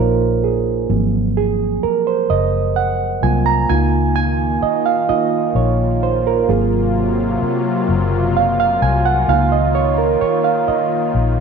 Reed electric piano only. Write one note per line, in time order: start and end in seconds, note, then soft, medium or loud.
0.00 0.90 A#3 medium
0.00 0.91 D#4 soft
0.00 0.92 F4 medium
0.00 0.91 A#4 medium
0.00 0.91 C5 medium
0.00 0.91 C#5 loud
0.00 0.92 D#5 medium
0.44 0.87 G#4 medium
0.89 3.65 F3 medium
0.89 3.22 F#3 soft
0.89 3.21 A#3 soft
0.89 3.22 C4 soft
1.37 1.84 G#4 medium
1.83 2.05 A#4 medium
2.07 2.30 C5 medium
2.30 2.77 D#5 medium
2.76 3.24 F#5 medium
3.23 3.65 F#3 soft
3.23 3.65 A#3 soft
3.23 3.65 C4 soft
3.23 3.65 F4 medium
3.23 3.46 G#5 medium
3.46 3.70 A#5 loud
3.69 5.04 A#3 soft
3.69 5.04 D#4 soft
3.69 5.05 F4 medium
3.69 4.15 G#5 medium
4.16 4.59 G#5 loud
4.63 4.84 D#5 medium
4.86 5.09 F5 medium
5.08 5.51 A#3 soft
5.08 5.51 D#4 soft
5.08 5.51 F4 medium
5.08 5.56 D#5 medium
5.56 6.03 C#5 medium
6.03 6.26 C5 medium
6.27 6.50 A#4 medium
6.48 9.23 F#3 soft
6.48 9.23 A#3 soft
6.48 9.23 C4 soft
6.48 9.23 F4 medium
6.48 7.84 G#4 medium
8.37 8.59 F5 medium
8.60 8.82 F5 medium
8.82 9.05 G#5 loud
9.05 9.28 F#5 medium
9.28 10.63 A#3 medium
9.28 10.63 D#4 soft
9.28 10.63 F4 medium
9.28 9.52 F5 medium
9.52 9.75 D#5 medium
9.75 9.98 C#5 medium
9.98 10.21 A#4 medium
10.21 10.44 C#5 medium
10.44 10.67 F5 medium
10.68 11.10 D#5 medium